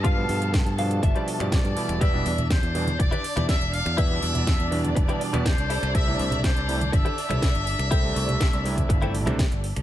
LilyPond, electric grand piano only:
\new Staff \with { instrumentName = "Electric grand piano" } { \clef bass \time 4/4 \key c \major \tempo 4 = 122 r16 <b, f g b>4~ <b, f g b>16 <b, f g d'>8. <b, f g d'>8 <b, f g>8. <b, e g e'>8~ | <b, e g e'>16 <b, e g d'>16 r4 <b, e g d'>16 r2 r16 | r16 <b, e g b>4~ <b, e g b>16 <b, e g d'>8. <b, e g d'>8 <b, e g b>16 r4 | r16 <c g a e'>16 r4 <c g a e'>16 r2 r16 |
r16 <c g a d'>4~ <c g a d'>16 <c g a e'>8. <c g a e'>8 <c g a d'>16 r4 | }